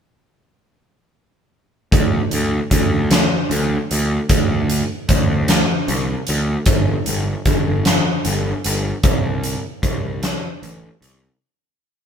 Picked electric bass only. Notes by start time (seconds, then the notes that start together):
1.92 D2
2.33 D2
2.71 D2
3.50 D2
3.91 D2
4.30 D2
5.09 D2
5.88 C2
6.29 D2
6.66 G1
7.08 G1
7.46 G1
8.26 G1
8.66 G1
9.04 C2
9.83 C2
10.62 A1
11.02 C2